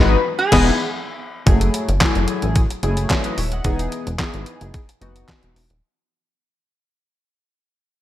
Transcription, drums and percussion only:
0.52 kick loud
0.52 snare loud
0.52 crash medium
1.47 kick loud
1.47 closed hi-hat medium
1.61 closed hi-hat medium
1.74 closed hi-hat medium
1.89 closed hi-hat soft
2.01 kick loud
2.01 snare loud
2.01 clap loud
2.01 closed hi-hat medium
2.15 closed hi-hat soft
2.28 closed hi-hat medium
2.42 closed hi-hat medium
2.56 kick loud
2.56 closed hi-hat medium
2.71 closed hi-hat medium
2.83 closed hi-hat medium
2.97 closed hi-hat medium
3.10 kick loud
3.10 snare loud
3.10 clap medium
3.10 closed hi-hat medium
3.24 closed hi-hat medium
3.38 open hi-hat medium
3.52 closed hi-hat soft
3.64 kick loud
3.64 closed hi-hat medium
3.79 closed hi-hat medium
3.92 closed hi-hat medium
4.07 closed hi-hat medium
4.19 kick loud
4.19 snare loud
4.19 clap loud
4.19 closed hi-hat medium
4.34 closed hi-hat soft
4.46 closed hi-hat medium
4.61 closed hi-hat medium
4.74 kick loud
4.74 closed hi-hat medium
4.89 closed hi-hat medium
5.02 closed hi-hat medium
5.16 closed hi-hat medium
5.28 kick loud
5.28 snare loud
5.28 clap medium
5.28 closed hi-hat medium
5.43 closed hi-hat medium
5.56 open hi-hat medium
5.70 closed hi-hat soft

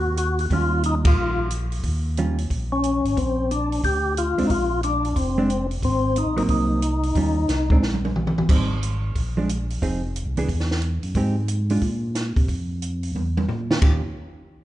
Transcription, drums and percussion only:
0.17 closed hi-hat medium
0.39 open hi-hat soft
0.50 kick soft
0.50 open hi-hat soft
0.83 closed hi-hat medium
1.05 kick medium
1.05 ride medium
1.50 closed hi-hat soft
1.72 open hi-hat soft
1.84 kick soft
1.84 open hi-hat soft
2.17 closed hi-hat soft
2.38 open hi-hat soft
2.50 kick soft
2.50 open hi-hat soft
2.83 closed hi-hat soft
3.05 open hi-hat soft
3.17 kick soft
3.17 open hi-hat soft
3.51 closed hi-hat soft
3.72 open hi-hat soft
3.84 kick soft
3.84 open hi-hat soft
4.17 closed hi-hat medium
4.38 open hi-hat soft
4.50 kick soft
4.50 open hi-hat soft
4.83 closed hi-hat soft
5.05 open hi-hat soft
5.16 kick soft
5.16 open hi-hat soft
5.50 closed hi-hat soft
5.71 open hi-hat soft
5.83 kick soft
5.83 open hi-hat soft
6.16 closed hi-hat soft
6.37 open hi-hat soft
6.49 kick soft
6.49 open hi-hat soft
6.82 closed hi-hat medium
7.03 open hi-hat soft
7.15 kick soft
7.15 open hi-hat soft
7.49 snare soft
7.49 closed hi-hat soft
7.70 kick medium
7.83 snare soft
7.94 high tom soft
8.05 high tom medium
8.16 mid tom medium
8.27 mid tom medium
8.38 mid tom medium
8.49 kick medium
8.49 crash medium
8.83 closed hi-hat soft
9.15 kick soft
9.15 open hi-hat soft
9.49 closed hi-hat soft
9.70 open hi-hat soft
9.82 kick soft
9.82 open hi-hat soft
10.16 closed hi-hat soft
10.37 open hi-hat soft
10.49 kick soft
10.49 open hi-hat soft
10.60 snare soft
10.71 snare soft
10.82 closed hi-hat soft
11.03 open hi-hat soft
11.15 kick soft
11.15 open hi-hat soft
11.48 closed hi-hat soft
11.70 open hi-hat soft
11.82 kick soft
11.82 open hi-hat soft
12.15 snare soft
12.15 closed hi-hat soft
12.36 kick soft
12.36 open hi-hat soft
12.48 kick soft
12.48 open hi-hat soft
12.82 closed hi-hat soft
13.03 open hi-hat soft
13.16 high tom soft
13.37 high tom medium
13.49 floor tom medium
13.71 snare medium
13.82 kick medium
13.82 ride bell medium

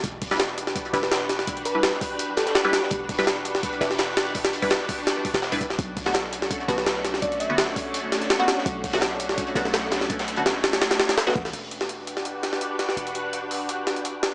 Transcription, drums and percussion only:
0.04 kick loud
0.04 closed hi-hat medium
0.22 kick loud
0.22 closed hi-hat medium
0.22 open hi-hat medium
0.31 snare medium
0.31 snare soft
0.39 snare loud
0.39 closed hi-hat medium
0.58 closed hi-hat medium
0.67 snare soft
0.76 kick loud
0.76 closed hi-hat medium
0.85 closed hi-hat soft
0.94 snare soft
0.94 closed hi-hat medium
1.03 snare soft
1.12 snare loud
1.12 closed hi-hat medium
1.29 snare soft
1.29 closed hi-hat medium
1.39 snare soft
1.47 kick loud
1.47 closed hi-hat medium
1.57 closed hi-hat soft
1.65 closed hi-hat medium
1.83 snare loud
1.83 closed hi-hat medium
2.01 kick loud
2.01 closed hi-hat medium
2.01 open hi-hat medium
2.19 closed hi-hat medium
2.37 snare medium
2.37 closed hi-hat medium
2.47 snare soft
2.47 closed hi-hat soft
2.55 snare loud
2.55 closed hi-hat medium
2.73 snare loud
2.73 closed hi-hat medium
2.83 snare soft
2.91 kick loud
2.91 closed hi-hat medium
3.09 kick loud
3.09 closed hi-hat medium
3.09 open hi-hat medium
3.18 snare soft
3.18 snare medium
3.27 snare loud
3.27 closed hi-hat medium
3.27 closed hi-hat loud
3.45 closed hi-hat medium
3.55 snare soft
3.63 kick loud
3.63 closed hi-hat medium
3.72 closed hi-hat soft
3.81 snare soft
3.81 closed hi-hat medium
3.91 snare soft
3.98 snare loud
3.98 closed hi-hat medium
4.17 snare loud
4.17 closed hi-hat medium
4.35 kick medium
4.35 closed hi-hat medium
4.35 open hi-hat medium
4.45 snare loud
4.45 closed hi-hat medium
4.53 closed hi-hat medium
4.62 kick medium
4.62 open hi-hat medium
4.70 snare loud
4.70 closed hi-hat medium
4.89 kick loud
4.89 closed hi-hat medium
4.89 open hi-hat medium
5.07 snare loud
5.07 closed hi-hat medium
5.25 kick medium
5.25 closed hi-hat medium
5.25 open hi-hat medium
5.34 snare soft
5.34 snare loud
5.34 closed hi-hat medium
5.42 snare loud
5.42 closed hi-hat medium
5.52 kick medium
5.52 open hi-hat medium
5.61 kick loud
5.61 closed hi-hat medium
5.70 snare medium
5.70 snare soft
5.79 kick loud
5.79 closed hi-hat medium
5.97 kick loud
5.97 closed hi-hat medium
5.97 open hi-hat medium
6.05 snare soft
6.05 snare medium
6.14 snare loud
6.14 closed hi-hat medium
6.33 closed hi-hat medium
6.42 snare soft
6.51 kick loud
6.51 closed hi-hat medium
6.60 closed hi-hat soft
6.69 snare soft
6.69 closed hi-hat medium
6.78 snare soft
6.86 snare loud
6.86 closed hi-hat medium
7.05 snare soft
7.05 closed hi-hat medium
7.14 snare soft
7.22 kick loud
7.22 closed hi-hat medium
7.32 closed hi-hat soft
7.40 closed hi-hat medium
7.58 snare loud
7.58 closed hi-hat medium
7.76 kick loud
7.76 closed hi-hat medium
7.76 open hi-hat medium
7.94 closed hi-hat medium
8.12 snare medium
8.12 closed hi-hat medium
8.22 snare soft
8.22 closed hi-hat soft
8.30 snare loud
8.30 closed hi-hat medium
8.48 snare loud
8.48 closed hi-hat medium
8.58 snare soft
8.66 kick loud
8.66 closed hi-hat medium
8.84 kick loud
8.84 closed hi-hat medium
8.84 open hi-hat medium
8.93 snare medium
8.93 snare soft
9.01 snare loud
9.01 closed hi-hat medium
9.20 closed hi-hat medium
9.29 snare soft
9.38 kick loud
9.38 closed hi-hat medium
9.47 closed hi-hat soft
9.55 snare soft
9.55 closed hi-hat medium
9.65 snare soft
9.73 snare loud
9.73 closed hi-hat medium
9.92 snare loud
9.92 snare soft
9.92 closed hi-hat medium
10.01 snare soft
10.10 kick loud
10.10 closed hi-hat medium
10.19 snare loud
10.19 closed hi-hat medium
10.19 closed hi-hat soft
10.28 closed hi-hat medium
10.36 closed hi-hat medium
10.46 snare loud
10.46 closed hi-hat medium
10.63 snare loud
10.63 closed hi-hat medium
10.73 snare loud
10.73 closed hi-hat medium
10.81 snare loud
10.81 closed hi-hat medium
10.91 snare loud
10.91 closed hi-hat medium
10.99 snare loud
10.99 closed hi-hat medium
11.09 snare loud
11.09 closed hi-hat medium
11.18 snare loud
11.18 closed hi-hat medium
11.27 snare loud
11.27 closed hi-hat medium
11.36 kick loud
11.36 closed hi-hat medium
11.45 snare soft
11.45 open hi-hat medium
11.53 closed hi-hat medium
11.71 closed hi-hat medium
11.81 snare medium
11.89 closed hi-hat medium
12.07 closed hi-hat medium
12.17 snare soft
12.25 closed hi-hat medium
12.43 snare soft
12.43 closed hi-hat medium
12.53 snare soft
12.61 closed hi-hat medium
12.79 snare soft
12.79 closed hi-hat medium
12.89 snare soft
12.97 closed hi-hat medium
13.07 closed hi-hat soft
13.15 closed hi-hat medium
13.33 closed hi-hat medium
13.51 open hi-hat medium
13.69 closed hi-hat medium
13.87 snare medium
13.87 closed hi-hat medium
13.96 closed hi-hat soft
14.05 closed hi-hat medium
14.23 snare loud
14.23 closed hi-hat medium

